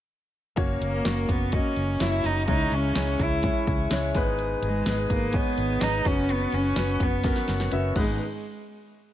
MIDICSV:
0, 0, Header, 1, 6, 480
1, 0, Start_track
1, 0, Tempo, 476948
1, 577, Time_signature, 4, 2, 24, 8
1, 9191, End_track
2, 0, Start_track
2, 0, Title_t, "Tonewheel organ"
2, 0, Program_c, 0, 16
2, 577, Note_on_c, 0, 73, 52
2, 577, Note_on_c, 0, 82, 53
2, 579, Note_on_c, 0, 85, 61
2, 581, Note_on_c, 0, 66, 59
2, 2480, Note_off_c, 0, 82, 0
2, 2482, Note_off_c, 0, 66, 0
2, 2496, Note_on_c, 0, 80, 54
2, 2498, Note_on_c, 0, 64, 58
2, 4143, Note_off_c, 0, 73, 0
2, 4144, Note_off_c, 0, 85, 0
2, 4161, Note_off_c, 0, 64, 0
2, 4183, Note_on_c, 0, 87, 67
2, 4188, Note_on_c, 0, 71, 55
2, 4189, Note_on_c, 0, 63, 61
2, 6058, Note_off_c, 0, 80, 0
2, 6079, Note_off_c, 0, 87, 0
2, 6081, Note_off_c, 0, 71, 0
2, 6082, Note_off_c, 0, 63, 0
2, 6097, Note_on_c, 0, 78, 55
2, 6101, Note_on_c, 0, 66, 60
2, 6102, Note_on_c, 0, 73, 54
2, 6105, Note_on_c, 0, 85, 67
2, 7994, Note_off_c, 0, 78, 0
2, 7996, Note_off_c, 0, 66, 0
2, 7997, Note_off_c, 0, 73, 0
2, 7998, Note_off_c, 0, 85, 0
2, 8013, Note_on_c, 0, 59, 54
2, 8015, Note_on_c, 0, 71, 57
2, 8016, Note_on_c, 0, 63, 54
2, 8018, Note_on_c, 0, 75, 68
2, 8020, Note_on_c, 0, 56, 60
2, 8236, Note_off_c, 0, 59, 0
2, 8237, Note_off_c, 0, 63, 0
2, 8237, Note_off_c, 0, 71, 0
2, 8239, Note_off_c, 0, 75, 0
2, 8240, Note_off_c, 0, 56, 0
2, 9191, End_track
3, 0, Start_track
3, 0, Title_t, "Cello"
3, 0, Program_c, 1, 42
3, 835, Note_on_c, 1, 58, 76
3, 1313, Note_on_c, 1, 59, 72
3, 1328, Note_off_c, 1, 58, 0
3, 1552, Note_on_c, 1, 61, 85
3, 1568, Note_off_c, 1, 59, 0
3, 2024, Note_on_c, 1, 64, 96
3, 2039, Note_off_c, 1, 61, 0
3, 2272, Note_on_c, 1, 63, 85
3, 2287, Note_off_c, 1, 64, 0
3, 2500, Note_off_c, 1, 63, 0
3, 2506, Note_on_c, 1, 63, 93
3, 2754, Note_on_c, 1, 61, 91
3, 2769, Note_off_c, 1, 63, 0
3, 3238, Note_on_c, 1, 64, 78
3, 3253, Note_off_c, 1, 61, 0
3, 3949, Note_off_c, 1, 64, 0
3, 4673, Note_on_c, 1, 56, 82
3, 5112, Note_off_c, 1, 56, 0
3, 5151, Note_on_c, 1, 58, 76
3, 5388, Note_on_c, 1, 59, 86
3, 5403, Note_off_c, 1, 58, 0
3, 5867, Note_on_c, 1, 63, 96
3, 5882, Note_off_c, 1, 59, 0
3, 6104, Note_on_c, 1, 61, 91
3, 6119, Note_off_c, 1, 63, 0
3, 6355, Note_on_c, 1, 59, 97
3, 6370, Note_off_c, 1, 61, 0
3, 6584, Note_on_c, 1, 61, 96
3, 6599, Note_off_c, 1, 59, 0
3, 7071, Note_on_c, 1, 59, 84
3, 7086, Note_off_c, 1, 61, 0
3, 7782, Note_off_c, 1, 59, 0
3, 8019, Note_on_c, 1, 56, 80
3, 8239, Note_off_c, 1, 56, 0
3, 9191, End_track
4, 0, Start_track
4, 0, Title_t, "Grand piano"
4, 0, Program_c, 2, 0
4, 565, Note_on_c, 2, 58, 89
4, 567, Note_on_c, 2, 61, 78
4, 575, Note_on_c, 2, 66, 83
4, 581, Note_on_c, 2, 73, 96
4, 755, Control_c, 2, 64, 127
4, 1016, Note_off_c, 2, 58, 0
4, 1017, Note_off_c, 2, 61, 0
4, 1020, Note_off_c, 2, 66, 0
4, 1024, Note_off_c, 2, 73, 0
4, 1052, Note_on_c, 2, 58, 60
4, 1057, Note_on_c, 2, 61, 54
4, 1062, Note_on_c, 2, 66, 54
4, 1071, Note_on_c, 2, 73, 64
4, 1499, Note_off_c, 2, 58, 0
4, 1502, Note_off_c, 2, 61, 0
4, 1504, Note_off_c, 2, 66, 0
4, 1509, Note_off_c, 2, 73, 0
4, 1535, Note_on_c, 2, 58, 59
4, 1540, Note_on_c, 2, 61, 57
4, 1549, Note_on_c, 2, 66, 55
4, 1549, Note_on_c, 2, 75, 67
4, 1981, Note_off_c, 2, 58, 0
4, 1984, Note_off_c, 2, 61, 0
4, 1988, Note_off_c, 2, 66, 0
4, 1988, Note_off_c, 2, 75, 0
4, 2012, Note_on_c, 2, 58, 62
4, 2018, Note_on_c, 2, 61, 55
4, 2025, Note_on_c, 2, 66, 52
4, 2028, Note_on_c, 2, 73, 69
4, 2460, Note_off_c, 2, 58, 0
4, 2463, Note_off_c, 2, 61, 0
4, 2466, Note_off_c, 2, 66, 0
4, 2468, Note_off_c, 2, 73, 0
4, 2487, Note_on_c, 2, 56, 79
4, 2494, Note_on_c, 2, 61, 69
4, 2500, Note_on_c, 2, 49, 55
4, 2502, Note_on_c, 2, 64, 70
4, 2509, Note_on_c, 2, 73, 86
4, 2514, Control_c, 2, 64, 0
4, 2676, Control_c, 2, 64, 127
4, 2937, Note_off_c, 2, 56, 0
4, 2941, Note_off_c, 2, 61, 0
4, 2944, Note_off_c, 2, 64, 0
4, 2948, Note_off_c, 2, 73, 0
4, 2972, Note_on_c, 2, 56, 62
4, 2974, Note_on_c, 2, 61, 60
4, 2981, Note_on_c, 2, 64, 59
4, 2986, Note_on_c, 2, 73, 73
4, 3180, Note_off_c, 2, 49, 0
4, 3420, Note_off_c, 2, 56, 0
4, 3421, Note_off_c, 2, 61, 0
4, 3424, Note_off_c, 2, 64, 0
4, 3426, Note_off_c, 2, 73, 0
4, 3448, Note_on_c, 2, 56, 59
4, 3455, Note_on_c, 2, 61, 59
4, 3464, Note_on_c, 2, 64, 62
4, 3470, Note_on_c, 2, 73, 68
4, 3897, Note_off_c, 2, 56, 0
4, 3901, Note_off_c, 2, 61, 0
4, 3905, Note_off_c, 2, 64, 0
4, 3908, Note_off_c, 2, 73, 0
4, 3931, Note_on_c, 2, 56, 80
4, 3936, Note_on_c, 2, 61, 69
4, 3941, Note_on_c, 2, 64, 70
4, 3953, Note_on_c, 2, 73, 87
4, 4162, Note_off_c, 2, 56, 0
4, 4177, Note_off_c, 2, 61, 0
4, 4177, Note_on_c, 2, 56, 85
4, 4180, Note_off_c, 2, 64, 0
4, 4183, Note_on_c, 2, 59, 78
4, 4186, Note_off_c, 2, 73, 0
4, 4187, Note_on_c, 2, 44, 69
4, 4190, Note_on_c, 2, 63, 78
4, 4193, Control_c, 2, 64, 0
4, 4197, Note_on_c, 2, 71, 91
4, 4384, Control_c, 2, 64, 127
4, 4843, Note_off_c, 2, 56, 0
4, 4846, Note_off_c, 2, 59, 0
4, 4849, Note_off_c, 2, 63, 0
4, 4853, Note_off_c, 2, 71, 0
4, 4862, Note_off_c, 2, 44, 0
4, 4889, Note_on_c, 2, 56, 62
4, 4895, Note_on_c, 2, 59, 61
4, 4901, Note_on_c, 2, 63, 59
4, 4909, Note_on_c, 2, 71, 72
4, 5336, Note_off_c, 2, 56, 0
4, 5339, Note_off_c, 2, 59, 0
4, 5342, Note_off_c, 2, 63, 0
4, 5347, Note_off_c, 2, 71, 0
4, 5367, Note_on_c, 2, 56, 64
4, 5372, Note_on_c, 2, 59, 59
4, 5381, Note_on_c, 2, 63, 59
4, 5387, Note_on_c, 2, 73, 74
4, 5815, Note_off_c, 2, 56, 0
4, 5818, Note_off_c, 2, 59, 0
4, 5822, Note_off_c, 2, 63, 0
4, 5825, Note_off_c, 2, 73, 0
4, 5845, Note_on_c, 2, 56, 63
4, 5851, Note_on_c, 2, 59, 60
4, 5860, Note_on_c, 2, 63, 57
4, 5865, Note_on_c, 2, 71, 69
4, 6070, Note_off_c, 2, 59, 0
4, 6085, Note_on_c, 2, 59, 69
4, 6090, Note_off_c, 2, 56, 0
4, 6090, Note_on_c, 2, 61, 64
4, 6096, Note_on_c, 2, 66, 65
4, 6098, Note_off_c, 2, 63, 0
4, 6100, Note_off_c, 2, 71, 0
4, 6105, Note_on_c, 2, 73, 78
4, 6106, Control_c, 2, 64, 0
4, 6278, Control_c, 2, 64, 127
4, 6755, Note_off_c, 2, 59, 0
4, 6757, Note_off_c, 2, 61, 0
4, 6760, Note_off_c, 2, 66, 0
4, 6765, Note_off_c, 2, 73, 0
4, 6804, Note_on_c, 2, 59, 69
4, 6813, Note_on_c, 2, 61, 60
4, 6816, Note_on_c, 2, 66, 61
4, 6826, Note_on_c, 2, 71, 76
4, 7252, Note_off_c, 2, 59, 0
4, 7257, Note_off_c, 2, 61, 0
4, 7258, Note_off_c, 2, 66, 0
4, 7263, Note_off_c, 2, 71, 0
4, 7280, Note_on_c, 2, 59, 68
4, 7285, Note_on_c, 2, 61, 60
4, 7295, Note_on_c, 2, 66, 61
4, 7303, Note_on_c, 2, 70, 73
4, 7730, Note_off_c, 2, 59, 0
4, 7733, Note_off_c, 2, 61, 0
4, 7737, Note_off_c, 2, 66, 0
4, 7742, Note_off_c, 2, 70, 0
4, 7758, Note_on_c, 2, 59, 78
4, 7764, Note_on_c, 2, 61, 71
4, 7767, Note_on_c, 2, 66, 73
4, 7777, Note_on_c, 2, 76, 89
4, 7998, Note_off_c, 2, 59, 0
4, 8008, Note_off_c, 2, 61, 0
4, 8010, Note_off_c, 2, 66, 0
4, 8013, Note_on_c, 2, 59, 71
4, 8015, Note_off_c, 2, 76, 0
4, 8015, Note_on_c, 2, 71, 84
4, 8017, Note_on_c, 2, 56, 78
4, 8018, Note_on_c, 2, 32, 73
4, 8018, Note_on_c, 2, 63, 70
4, 8025, Control_c, 2, 64, 0
4, 8121, Control_c, 2, 64, 127
4, 8236, Note_off_c, 2, 59, 0
4, 8237, Note_off_c, 2, 71, 0
4, 8238, Note_off_c, 2, 32, 0
4, 8238, Note_off_c, 2, 56, 0
4, 8238, Note_off_c, 2, 63, 0
4, 8267, Control_c, 2, 64, 0
4, 9191, End_track
5, 0, Start_track
5, 0, Title_t, "Fingered electric bass"
5, 0, Program_c, 3, 33
5, 578, Note_on_c, 3, 30, 86
5, 775, Note_off_c, 3, 30, 0
5, 813, Note_on_c, 3, 30, 82
5, 1012, Note_off_c, 3, 30, 0
5, 1059, Note_on_c, 3, 30, 83
5, 1256, Note_off_c, 3, 30, 0
5, 1294, Note_on_c, 3, 30, 84
5, 1592, Note_off_c, 3, 30, 0
5, 1777, Note_on_c, 3, 30, 77
5, 1975, Note_off_c, 3, 30, 0
5, 2017, Note_on_c, 3, 30, 86
5, 2215, Note_off_c, 3, 30, 0
5, 2252, Note_on_c, 3, 30, 78
5, 2496, Note_on_c, 3, 37, 94
5, 2511, Note_off_c, 3, 30, 0
5, 2694, Note_off_c, 3, 37, 0
5, 2734, Note_on_c, 3, 37, 86
5, 2933, Note_off_c, 3, 37, 0
5, 2976, Note_on_c, 3, 37, 82
5, 3174, Note_off_c, 3, 37, 0
5, 3211, Note_on_c, 3, 37, 89
5, 3510, Note_off_c, 3, 37, 0
5, 3694, Note_on_c, 3, 37, 82
5, 3893, Note_off_c, 3, 37, 0
5, 3934, Note_on_c, 3, 37, 82
5, 4133, Note_off_c, 3, 37, 0
5, 4173, Note_on_c, 3, 32, 89
5, 4569, Note_off_c, 3, 32, 0
5, 4651, Note_on_c, 3, 32, 91
5, 4851, Note_off_c, 3, 32, 0
5, 4893, Note_on_c, 3, 32, 85
5, 5092, Note_off_c, 3, 32, 0
5, 5133, Note_on_c, 3, 32, 95
5, 5430, Note_off_c, 3, 32, 0
5, 5614, Note_on_c, 3, 32, 93
5, 5812, Note_off_c, 3, 32, 0
5, 5850, Note_on_c, 3, 32, 94
5, 6049, Note_off_c, 3, 32, 0
5, 6092, Note_on_c, 3, 30, 84
5, 6486, Note_off_c, 3, 30, 0
5, 6571, Note_on_c, 3, 30, 93
5, 6769, Note_off_c, 3, 30, 0
5, 6810, Note_on_c, 3, 30, 91
5, 7008, Note_off_c, 3, 30, 0
5, 7045, Note_on_c, 3, 30, 92
5, 7344, Note_off_c, 3, 30, 0
5, 7533, Note_on_c, 3, 30, 88
5, 7730, Note_off_c, 3, 30, 0
5, 7775, Note_on_c, 3, 30, 93
5, 7971, Note_off_c, 3, 30, 0
5, 8006, Note_on_c, 3, 32, 90
5, 8232, Note_off_c, 3, 32, 0
5, 9191, End_track
6, 0, Start_track
6, 0, Title_t, "Drums"
6, 576, Note_on_c, 9, 42, 54
6, 577, Note_on_c, 9, 36, 98
6, 677, Note_off_c, 9, 36, 0
6, 677, Note_off_c, 9, 42, 0
6, 822, Note_on_c, 9, 42, 62
6, 923, Note_off_c, 9, 42, 0
6, 1057, Note_on_c, 9, 42, 70
6, 1059, Note_on_c, 9, 38, 97
6, 1158, Note_off_c, 9, 42, 0
6, 1159, Note_off_c, 9, 38, 0
6, 1295, Note_on_c, 9, 36, 74
6, 1301, Note_on_c, 9, 42, 60
6, 1396, Note_off_c, 9, 36, 0
6, 1401, Note_off_c, 9, 42, 0
6, 1532, Note_on_c, 9, 42, 69
6, 1538, Note_on_c, 9, 36, 83
6, 1633, Note_off_c, 9, 42, 0
6, 1639, Note_off_c, 9, 36, 0
6, 1776, Note_on_c, 9, 42, 63
6, 1877, Note_off_c, 9, 42, 0
6, 2015, Note_on_c, 9, 42, 70
6, 2016, Note_on_c, 9, 38, 95
6, 2115, Note_off_c, 9, 42, 0
6, 2117, Note_off_c, 9, 38, 0
6, 2255, Note_on_c, 9, 38, 32
6, 2255, Note_on_c, 9, 42, 68
6, 2355, Note_off_c, 9, 38, 0
6, 2356, Note_off_c, 9, 42, 0
6, 2493, Note_on_c, 9, 42, 59
6, 2497, Note_on_c, 9, 36, 98
6, 2594, Note_off_c, 9, 42, 0
6, 2598, Note_off_c, 9, 36, 0
6, 2736, Note_on_c, 9, 42, 65
6, 2837, Note_off_c, 9, 42, 0
6, 2973, Note_on_c, 9, 42, 70
6, 2974, Note_on_c, 9, 38, 103
6, 3073, Note_off_c, 9, 42, 0
6, 3074, Note_off_c, 9, 38, 0
6, 3215, Note_on_c, 9, 36, 68
6, 3219, Note_on_c, 9, 42, 60
6, 3316, Note_off_c, 9, 36, 0
6, 3319, Note_off_c, 9, 42, 0
6, 3451, Note_on_c, 9, 42, 70
6, 3459, Note_on_c, 9, 36, 79
6, 3552, Note_off_c, 9, 42, 0
6, 3560, Note_off_c, 9, 36, 0
6, 3697, Note_on_c, 9, 42, 65
6, 3698, Note_on_c, 9, 36, 85
6, 3798, Note_off_c, 9, 36, 0
6, 3798, Note_off_c, 9, 42, 0
6, 3932, Note_on_c, 9, 42, 75
6, 3933, Note_on_c, 9, 38, 102
6, 4032, Note_off_c, 9, 42, 0
6, 4033, Note_off_c, 9, 38, 0
6, 4172, Note_on_c, 9, 38, 32
6, 4173, Note_on_c, 9, 42, 71
6, 4177, Note_on_c, 9, 36, 89
6, 4273, Note_off_c, 9, 38, 0
6, 4273, Note_off_c, 9, 42, 0
6, 4278, Note_off_c, 9, 36, 0
6, 4416, Note_on_c, 9, 42, 57
6, 4517, Note_off_c, 9, 42, 0
6, 4656, Note_on_c, 9, 42, 67
6, 4757, Note_off_c, 9, 42, 0
6, 4891, Note_on_c, 9, 42, 76
6, 4892, Note_on_c, 9, 38, 104
6, 4992, Note_off_c, 9, 42, 0
6, 4993, Note_off_c, 9, 38, 0
6, 5133, Note_on_c, 9, 36, 71
6, 5136, Note_on_c, 9, 42, 64
6, 5234, Note_off_c, 9, 36, 0
6, 5237, Note_off_c, 9, 42, 0
6, 5361, Note_on_c, 9, 42, 68
6, 5375, Note_on_c, 9, 36, 87
6, 5461, Note_off_c, 9, 42, 0
6, 5475, Note_off_c, 9, 36, 0
6, 5613, Note_on_c, 9, 42, 70
6, 5714, Note_off_c, 9, 42, 0
6, 5848, Note_on_c, 9, 42, 73
6, 5849, Note_on_c, 9, 38, 99
6, 5949, Note_off_c, 9, 42, 0
6, 5950, Note_off_c, 9, 38, 0
6, 6091, Note_on_c, 9, 38, 33
6, 6092, Note_on_c, 9, 42, 68
6, 6093, Note_on_c, 9, 36, 93
6, 6192, Note_off_c, 9, 38, 0
6, 6192, Note_off_c, 9, 42, 0
6, 6193, Note_off_c, 9, 36, 0
6, 6331, Note_on_c, 9, 42, 59
6, 6432, Note_off_c, 9, 42, 0
6, 6567, Note_on_c, 9, 42, 68
6, 6667, Note_off_c, 9, 42, 0
6, 6805, Note_on_c, 9, 42, 79
6, 6806, Note_on_c, 9, 38, 106
6, 6905, Note_off_c, 9, 42, 0
6, 6907, Note_off_c, 9, 38, 0
6, 7047, Note_on_c, 9, 36, 75
6, 7050, Note_on_c, 9, 42, 65
6, 7147, Note_off_c, 9, 36, 0
6, 7151, Note_off_c, 9, 42, 0
6, 7282, Note_on_c, 9, 42, 72
6, 7288, Note_on_c, 9, 38, 50
6, 7290, Note_on_c, 9, 36, 93
6, 7383, Note_off_c, 9, 42, 0
6, 7389, Note_off_c, 9, 38, 0
6, 7390, Note_off_c, 9, 36, 0
6, 7407, Note_on_c, 9, 38, 47
6, 7508, Note_off_c, 9, 38, 0
6, 7526, Note_on_c, 9, 38, 67
6, 7526, Note_on_c, 9, 42, 65
6, 7627, Note_off_c, 9, 38, 0
6, 7627, Note_off_c, 9, 42, 0
6, 7649, Note_on_c, 9, 38, 61
6, 7750, Note_off_c, 9, 38, 0
6, 7766, Note_on_c, 9, 42, 78
6, 7867, Note_off_c, 9, 42, 0
6, 8008, Note_on_c, 9, 49, 78
6, 8009, Note_on_c, 9, 36, 97
6, 8108, Note_off_c, 9, 49, 0
6, 8110, Note_off_c, 9, 36, 0
6, 9191, End_track
0, 0, End_of_file